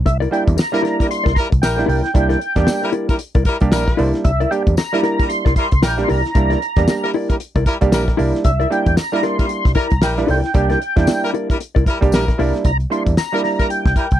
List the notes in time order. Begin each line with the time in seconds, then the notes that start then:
0.06 C2 E5, muted clean electric guitar stroke, kick, closed hi-hat
0.20 E4 A#4 D5, closed hi-hat
0.31 G3 A#3 D4 E4 G5, muted clean electric guitar stroke, closed hi-hat
0.47 E2, muted clean electric guitar stroke, kick, closed hi-hat
0.56 A#5, muted clean electric guitar stroke, snare, tambourine
0.72 G3 A#3 D4 E4 A#4, muted clean electric guitar stroke, closed hi-hat
0.82 E4 A#4 D5, snare, closed hi-hat
0.99 G3 E4 A#4, muted clean electric guitar stroke, kick, closed hi-hat
1.09 C6, muted clean electric guitar stroke, closed hi-hat
1.24 C2 E4 A#4 D5, kick, snare, closed hi-hat
1.35 G3 E4 A#4 A#5, muted clean electric guitar stroke, kick, closed hi-hat
1.50 C2, muted clean electric guitar stroke, kick, closed hi-hat
1.62 A#1 G3 E4 A#4 G5, snare, tambourine
1.77 G3 A#3 D4 E4, muted clean electric guitar stroke, snare, closed hi-hat
1.86 C2 E4 A#4 D5 G5, open hi-hat
2.03 muted clean electric guitar stroke, snare, closed hi-hat
2.14 C2 G3 A#3 D4 E4, muted clean electric guitar stroke, kick, closed hi-hat
2.29 E4 A#4 D5, snare, closed hi-hat
2.40 muted clean electric guitar stroke, closed hi-hat
2.56 E2 G3 A#3 D4 G4, muted clean electric guitar stroke, kick, snare, closed hi-hat
2.67 muted clean electric guitar stroke, snare, tambourine
2.82 G3 E4 A#4, muted clean electric guitar stroke, closed hi-hat
2.92 E4 A#4 D5, closed hi-hat
3.09 G3 E4 A#4, muted clean electric guitar stroke, kick, closed hi-hat
3.19 muted clean electric guitar stroke, closed hi-hat
3.35 C2 E4 A#4 D5, kick, closed hi-hat
3.45 G3 E4 A#4, muted clean electric guitar stroke, kick, closed hi-hat
3.60 C2 G3 A#3 D4 G4, muted clean electric guitar stroke, kick, closed hi-hat
3.71 A#1 G3 E4 A#4, snare, tambourine
3.87 muted clean electric guitar stroke, kick, snare
3.97 C2 G3 A#3 D4 E4 A#4 D5, open hi-hat
4.14 muted clean electric guitar stroke, snare, closed hi-hat
4.24 C2 E5, muted clean electric guitar stroke, kick, closed hi-hat
4.40 E4 A#4 D5, closed hi-hat
4.51 G3 A#3 D4 G4 G5, muted clean electric guitar stroke, closed hi-hat
4.67 E2, muted clean electric guitar stroke, kick, closed hi-hat
4.77 A#5, muted clean electric guitar stroke, snare, tambourine
4.93 G3 A#3 D4 E4 A#4, muted clean electric guitar stroke, closed hi-hat
5.03 E4 A#4 D5, snare, closed hi-hat
5.19 G3 E4 A#4, muted clean electric guitar stroke, kick, closed hi-hat
5.29 C6, muted clean electric guitar stroke, closed hi-hat
5.45 C2 E4 A#4 D5, kick, snare, closed hi-hat
5.56 G3 E4 A#4 C6, muted clean electric guitar stroke, kick, closed hi-hat
5.71 C2, muted clean electric guitar stroke, kick, closed hi-hat
5.82 A#1 G3 E4 A#4 G5, muted clean electric guitar stroke, snare, tambourine
5.98 G3 A#3 D4 G4, muted clean electric guitar stroke, snare, closed hi-hat
6.04 C6
6.08 C2 E4 A#4 D5 A#5, open hi-hat
6.24 muted clean electric guitar stroke, snare, closed hi-hat
6.35 C2 G3 A#3 D4 E4, muted clean electric guitar stroke, kick, closed hi-hat
6.50 E4 A#4 D5, snare, closed hi-hat
6.62 muted clean electric guitar stroke, closed hi-hat
6.76 E2 G3 A#3 D4 G4, muted clean electric guitar stroke, kick, snare, closed hi-hat
6.88 muted clean electric guitar stroke, snare, tambourine
7.04 G3 E4 A#4, muted clean electric guitar stroke, closed hi-hat
7.13 E4 A#4 D5, open hi-hat
7.29 G3 E4 A#4, muted clean electric guitar stroke, kick, closed hi-hat
7.40 muted clean electric guitar stroke, closed hi-hat
7.55 C2 E4 A#4 D5, kick, closed hi-hat
7.66 G3 E4 A#4, muted clean electric guitar stroke, kick, closed hi-hat
7.81 C2 G3 A#3 D4 G4, muted clean electric guitar stroke, kick, closed hi-hat
7.92 A#1 G3 E4 A#4, snare, tambourine
8.07 muted clean electric guitar stroke, kick, snare, closed hi-hat
8.17 C2 G3 A#3 D4 E4 A#4 D5, open hi-hat
8.34 muted clean electric guitar stroke, snare, closed hi-hat
8.44 C2 E5, muted clean electric guitar stroke, kick, closed hi-hat
8.60 E4 A#4 D5, closed hi-hat
8.70 G3 A#3 D4 E4 G5, muted clean electric guitar stroke, closed hi-hat
8.86 E2, muted clean electric guitar stroke, kick, closed hi-hat
8.97 A#5, muted clean electric guitar stroke, snare, tambourine
9.12 G3 A#3 D4 E4 A#4, muted clean electric guitar stroke, closed hi-hat
9.23 E4 A#4 D5 C6, snare, closed hi-hat
9.39 G3 E4 A#4, muted clean electric guitar stroke, kick, closed hi-hat
9.49 muted clean electric guitar stroke, closed hi-hat
9.65 C2, kick, snare, closed hi-hat
9.75 G3 E4 A#4 D5 A#5, kick, closed hi-hat
9.90 C2, muted clean electric guitar stroke, kick, closed hi-hat
10.02 A#1 G3 E4 A#4 G5, snare, tambourine
10.17 G3 A#3 D4 E4, muted clean electric guitar stroke, snare, closed hi-hat
10.27 C2 E4 A#4 D5 G5, open hi-hat
10.43 muted clean electric guitar stroke, snare, closed hi-hat
10.54 C2 G3 A#3 D4 G4, muted clean electric guitar stroke, kick, closed hi-hat
10.69 E4 A#4 D5, snare, closed hi-hat
10.81 muted clean electric guitar stroke, closed hi-hat
10.96 E2 G3 A#3 D4 E4, muted clean electric guitar stroke, kick, snare, closed hi-hat
11.07 muted clean electric guitar stroke, snare, tambourine
11.24 G3 E4 A#4, muted clean electric guitar stroke, closed hi-hat
11.34 E4 A#4 D5, closed hi-hat
11.50 G3 E4 A#4, muted clean electric guitar stroke, kick, closed hi-hat
11.60 muted clean electric guitar stroke, closed hi-hat
11.75 C2 E4 A#4 D5, kick, closed hi-hat
11.86 G3 E4 A#4, muted clean electric guitar stroke, kick, closed hi-hat
12.01 C2 G3 A#3 D4 G4, muted clean electric guitar stroke, kick, closed hi-hat
12.12 A#1 G3 E4 A#4, snare, tambourine
12.28 muted clean electric guitar stroke, kick, snare, closed hi-hat
12.38 C2 G3 A#3 D4 E4 A#4 D5, open hi-hat
12.54 muted clean electric guitar stroke, snare, closed hi-hat
12.64 C2 A#5, kick, closed hi-hat
12.80 closed hi-hat
12.90 G3 A#3 D4 E4 C6, closed hi-hat
13.06 E2, kick, closed hi-hat
13.17 A#5, snare, tambourine
13.32 G3 A#3 D4 E4 A#4, closed hi-hat
13.44 A#5, snare, open hi-hat
13.59 G3 E4 A#4, kick, closed hi-hat
13.70 G5, closed hi-hat
13.86 C2, kick, snare, closed hi-hat
13.96 G3 E4 A#4, kick, closed hi-hat
14.11 C2, kick, closed hi-hat